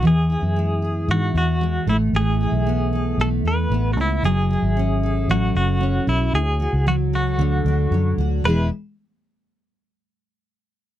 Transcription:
Already playing: steel-string acoustic guitar B3
0.02 fingered electric bass E2, steel-string acoustic guitar E3
0.07 clean electric guitar G#4
0.30 steel-string acoustic guitar E4
0.42 fingered electric bass F#2
0.56 steel-string acoustic guitar G#3
0.82 steel-string acoustic guitar G#4
1.08 fingered electric bass G#2, steel-string acoustic guitar E3, clean electric guitar F#4
1.34 fingered electric bass E2, steel-string acoustic guitar B3, clean electric guitar F#4
1.61 steel-string acoustic guitar G#3
1.87 fingered electric bass A1, steel-string acoustic guitar A3, clean electric guitar E4
2.13 fingered electric bass A1, steel-string acoustic guitar A3, clean electric guitar G#4
2.41 steel-string acoustic guitar E4
2.52 fingered electric bass B1
2.66 steel-string acoustic guitar B3
2.93 steel-string acoustic guitar A4
3.18 fingered electric bass B1, steel-string acoustic guitar A3, clean electric guitar A4
3.44 fingered electric bass E2, steel-string acoustic guitar B3, clean electric guitar B4
3.70 fingered electric bass A1, steel-string acoustic guitar B3
3.93 fingered electric bass C#2, clean electric guitar F#4
3.97 steel-string acoustic guitar E4, clean electric guitar E4
4.23 fingered electric bass F#1, steel-string acoustic guitar F#3, clean electric guitar G#4
4.51 steel-string acoustic guitar E4
4.62 fingered electric bass G#1
4.77 steel-string acoustic guitar C#4
5.03 steel-string acoustic guitar A4
5.28 fingered electric bass A1, steel-string acoustic guitar F#3, clean electric guitar F#4
5.55 fingered electric bass F#1, steel-string acoustic guitar C#4, clean electric guitar F#4
5.80 steel-string acoustic guitar C#4
6.07 fingered electric bass B1, steel-string acoustic guitar E4, clean electric guitar E4
6.33 fingered electric bass D2, clean electric guitar G#4
6.60 steel-string acoustic guitar F#4
6.73 fingered electric bass C#2
6.86 steel-string acoustic guitar F#3, clean electric guitar F#4
7.13 clean electric guitar F#4, steel-string acoustic guitar A4
7.39 fingered electric bass D2, steel-string acoustic guitar D3
7.65 fingered electric bass D2, steel-string acoustic guitar D4
7.91 fingered electric bass F#2, steel-string acoustic guitar F#3
8.18 fingered electric bass D2, steel-string acoustic guitar F#4
8.44 fingered electric bass E1, steel-string acoustic guitar E3 G#3 B3 E4 G#4, clean electric guitar B4

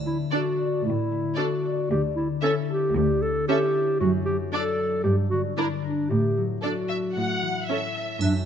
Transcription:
Already playing: cello section D2, harp D3
0.06 harp A3, clarinet E4
0.31 viola section D4, clarinet F#4, harp A4, violin section A4 D5
0.59 harp D5
0.84 cello section A2, harp D3, clarinet E4
1.11 harp A3
1.36 viola section D4, clarinet F#4, violin section A4 D5, harp A4
1.65 harp D5
1.90 cello section D2, harp D3, clarinet G4
2.16 harp D4, clarinet E4
2.41 viola section C#4, harp E4, clarinet A4, violin section A4 E5
2.70 clarinet G4, harp A4
2.94 cello section D2, harp D3, clarinet G4
3.22 harp D4, clarinet A4
3.48 viola section C#4, harp E4, clarinet G4, violin section A4 E5
3.75 harp A4
3.99 cello section F#2, harp F#2, clarinet F#4
4.25 harp F#3, clarinet G4
4.52 viola section D4, harp D4, clarinet A4, violin section A4 D5
4.79 harp A4
5.03 cello section G2, harp G2, clarinet G4
5.30 harp D3, clarinet F#4
5.57 viola section D4, harp D4, clarinet E4, violin section A#4 D5
5.82 clarinet D4, harp A#4
6.09 cello section A2, harp A2, clarinet G4
6.37 harp F#3
6.62 harp D4, viola section D4, clarinet F#4, violin section A4 D5
6.89 harp A4, violin section E5
7.14 cello section A2, harp A2, violin section F#5
7.42 harp E3
7.67 viola section C#4, harp E4, violin section A4 E5
7.95 harp A4
8.20 cello section F#2, harp F#2, clarinet D4, triangle

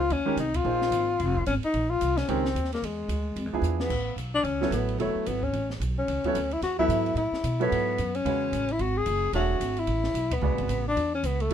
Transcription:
Already playing: tenor saxophone F4
0.10 upright bass D#2, tenor saxophone C#4, ride
0.26 grand piano D#3 G#3 C#4 G4 A#4, muted upright bass stroke
0.37 upright bass C2, tenor saxophone D#4, hi-hat pedal, ride
0.54 tenor saxophone F4, kick, ride
0.64 upright bass A#1, grand piano F3 A#3 D#4 G#4 C5
0.82 snare
0.91 upright bass G#1, hi-hat pedal, ride
1.20 upright bass F1, ride
1.36 kick
1.46 upright bass G#1, tenor saxophone C#4, hi-hat pedal, ride
1.63 tenor saxophone D#4, muted upright bass stroke, ride
1.74 upright bass A#1, ride
1.89 tenor saxophone F4
2.01 upright bass C2, hi-hat pedal, ride
2.17 tenor saxophone C#4, snare, ride
2.28 upright bass C#2, grand piano D#3 G#3 C#4 G4 A#4, tenor saxophone C4, ride
2.45 snare
2.55 upright bass D#2, hi-hat pedal, ride
2.65 snare
2.73 tenor saxophone A#3, snare, ride
2.82 upright bass E2, tenor saxophone G#3, ride
3.08 upright bass D2, hi-hat pedal, ride
3.36 upright bass F2, ride
3.46 upright bass E2
3.53 upright bass D2, grand piano F3 B3 D4 E4 G#4
3.62 upright bass E2, hi-hat pedal
3.80 tenor saxophone B3, snare
3.90 upright bass A1, kick, crash
4.16 upright bass B1, hi-hat pedal, ride
4.34 tenor saxophone D4
4.43 upright bass C#2, tenor saxophone C#4, ride
4.61 grand piano F#3 B3 E4 A4 C#5, snare
4.71 upright bass A1, tenor saxophone B3, hi-hat pedal, ride
4.89 ride
4.98 upright bass E1, grand piano F#3 B3 E4 A4 C#5, tenor saxophone A3, ride
5.15 muted upright bass stroke
5.26 upright bass G#1, tenor saxophone B3, hi-hat pedal, ride
5.43 tenor saxophone C#4, kick
5.53 upright bass A1, ride
5.70 snare
5.80 upright bass B1, hi-hat pedal, ride
5.98 tenor saxophone C#4
6.08 upright bass C#2, ride
6.24 grand piano F#3 B3 E4 A4 C#5, muted upright bass stroke, kick, ride
6.35 upright bass D2, hi-hat pedal, ride
6.51 tenor saxophone E4, ride
6.62 upright bass E2, tenor saxophone F#4, snare, ride
6.79 grand piano F#3 B3 E4 A4 E5, tenor saxophone E4, kick
6.88 upright bass G#2, hi-hat pedal, ride
7.06 ride
7.15 upright bass A2, tenor saxophone E4, ride
7.32 muted upright bass stroke, snare
7.44 upright bass B2, hi-hat pedal, ride
7.60 grand piano F#3 B3 E4 A4 C#5, tenor saxophone B3, ride
7.72 upright bass G#2, ride
7.98 upright bass F#2, hi-hat pedal, ride
8.15 tenor saxophone C#4, ride
8.25 upright bass E2, grand piano C#3 G#3 F#4 B4 C#5, ride
8.53 upright bass A1, hi-hat pedal, ride
8.69 tenor saxophone E4, ride
8.79 upright bass G#1, tenor saxophone F#4, ride
8.97 tenor saxophone G#4
9.06 upright bass F#1, hi-hat pedal, ride
9.33 upright bass E1, grand piano A3 D4 G#4 C#5 E5, tenor saxophone F#4, ride
9.60 upright bass G#1, hi-hat pedal, ride
9.77 tenor saxophone E4, ride
9.87 upright bass A1, ride
10.04 snare
10.14 upright bass B1, hi-hat pedal, ride
10.31 tenor saxophone B3, kick, ride
10.41 upright bass C#2, grand piano C#3 G#3 F#4 B4 D5
10.51 upright bass A1
10.58 upright bass G#1, ride
10.68 upright bass A1, hi-hat pedal, ride
10.88 tenor saxophone D4
10.96 upright bass E2, ride
11.14 tenor saxophone C#4
11.23 upright bass C#2, tenor saxophone B3, hi-hat pedal, ride
11.40 tenor saxophone A3, ride
11.50 upright bass D2

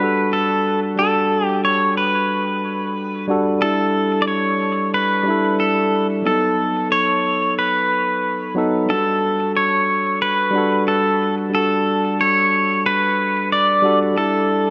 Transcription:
Already playing: tine electric piano G3 A4, pedal steel guitar B4
0.00 tine electric piano D4 F#4 A4
0.33 pedal steel guitar A4
0.96 tine electric piano G3 D4, pedal steel guitar A4
1.01 tine electric piano F#4 A4
1.46 pedal steel guitar G4
1.65 pedal steel guitar C#5
1.97 pedal steel guitar B4
3.28 tine electric piano G3 D4 F#4 A4
3.59 tine electric piano G3 D4, pedal steel guitar A4
3.64 tine electric piano E4 A4
4.22 pedal steel guitar D5
4.28 pedal steel guitar C#5
4.94 pedal steel guitar B4
5.23 tine electric piano G3 D4
5.28 tine electric piano E4 A4
5.60 pedal steel guitar A4
6.22 tine electric piano F#3 B3
6.27 tine electric piano D#4 A4, pedal steel guitar A4
6.92 pedal steel guitar C#5
7.59 pedal steel guitar B4
8.55 tine electric piano F#3 B3 D#4 A4
8.86 tine electric piano G3 D4, pedal steel guitar A4
8.91 tine electric piano F#4 A4
9.57 pedal steel guitar C#5
10.22 pedal steel guitar B4
10.51 tine electric piano G3 D4
10.55 tine electric piano F#4 A4
10.88 pedal steel guitar A4
11.50 tine electric piano G3 D4
11.54 tine electric piano F#4 A4, pedal steel guitar A4
12.21 pedal steel guitar C#5
12.86 pedal steel guitar B4
13.52 pedal steel guitar D5
13.82 tine electric piano G3 D4 F#4 A4
14.14 tine electric piano G3 D4, pedal steel guitar A4
14.18 tine electric piano E4 A4

